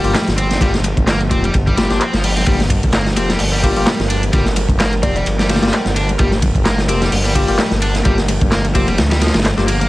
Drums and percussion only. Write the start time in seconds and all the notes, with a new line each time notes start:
0.04 closed hi-hat, muted conga
0.14 snare, clap, closed hi-hat, ride, high conga
0.28 snare, closed hi-hat
0.38 closed hi-hat, ride
0.50 snare, closed hi-hat, muted conga, low conga
0.61 kick, closed hi-hat, ride
0.74 snare, closed hi-hat
0.84 closed hi-hat, ride, muted conga, high conga, low conga
0.97 kick, closed hi-hat
1.07 snare, clap, closed hi-hat, ride
1.21 closed hi-hat
1.30 kick, closed hi-hat, ride, muted conga, high conga
1.44 closed hi-hat, ride, low conga
1.54 kick, closed hi-hat, ride
1.67 kick, closed hi-hat, muted conga
1.77 snare, closed hi-hat, ride, high conga
1.90 snare, closed hi-hat
2.01 clap, closed hi-hat, ride
2.13 snare, closed hi-hat, muted conga
2.24 closed hi-hat, open hi-hat
2.36 snare, closed hi-hat, high conga, low conga
2.46 kick, closed hi-hat, ride
2.60 snare, closed hi-hat, muted conga
2.70 kick, closed hi-hat, ride, high conga, low conga
2.83 kick, closed hi-hat
2.93 snare, clap, closed hi-hat, ride
3.06 snare, closed hi-hat, muted conga
3.16 closed hi-hat, ride, high conga
3.29 snare, closed hi-hat, low conga
3.39 closed hi-hat, open hi-hat, muted conga
3.53 closed hi-hat
3.63 kick, closed hi-hat, ride
3.76 closed hi-hat
3.86 snare, clap, closed hi-hat, ride, muted conga, high conga
4.00 snare, closed hi-hat
4.10 closed hi-hat, ride
4.23 closed hi-hat, muted conga, low conga
4.33 kick, closed hi-hat, ride
4.46 snare, closed hi-hat
4.56 closed hi-hat, ride, high conga, low conga
4.69 kick, closed hi-hat, muted conga
4.80 snare, clap, closed hi-hat, ride
4.93 closed hi-hat
5.03 kick, closed hi-hat, ride, muted conga, high conga
5.15 closed hi-hat, ride, low conga
5.26 closed hi-hat, ride
5.39 snare, closed hi-hat
5.49 snare, closed hi-hat, ride, muted conga, high conga
5.56 snare, ride
5.62 snare, closed hi-hat, ride
5.68 snare, ride
5.73 clap, closed hi-hat, ride
5.86 snare, closed hi-hat, muted conga
5.96 closed hi-hat, ride
6.09 closed hi-hat, high conga, low conga
6.19 kick, closed hi-hat, ride
6.32 snare, closed hi-hat, muted conga
6.42 kick, closed hi-hat, ride, high conga, low conga
6.55 kick, closed hi-hat
6.65 snare, clap, closed hi-hat, ride, muted conga
6.78 snare, closed hi-hat
6.88 closed hi-hat, ride, high conga
7.01 snare, closed hi-hat, low conga
7.12 closed hi-hat, open hi-hat, muted conga
7.25 closed hi-hat
7.35 kick, closed hi-hat, ride
7.48 closed hi-hat, muted conga
7.58 snare, clap, closed hi-hat, ride, high conga
7.71 snare, closed hi-hat
7.82 closed hi-hat, ride
7.94 snare, closed hi-hat, muted conga, low conga
8.05 kick, closed hi-hat, ride
8.18 snare, closed hi-hat
8.28 closed hi-hat, ride, muted conga, high conga, low conga
8.41 kick, closed hi-hat
8.52 snare, clap, closed hi-hat, ride
8.65 closed hi-hat, ride
8.75 kick, closed hi-hat, ride, muted conga, high conga
8.88 closed hi-hat, ride, low conga
8.98 snare, closed hi-hat, ride
9.11 snare, closed hi-hat, ride, muted conga
9.21 snare, closed hi-hat, ride, high conga
9.27 snare, ride
9.34 snare, closed hi-hat, ride
9.39 snare, ride
9.44 snare, clap, closed hi-hat, ride
9.58 snare, closed hi-hat, muted conga
9.68 closed hi-hat, ride
9.81 closed hi-hat, high conga, low conga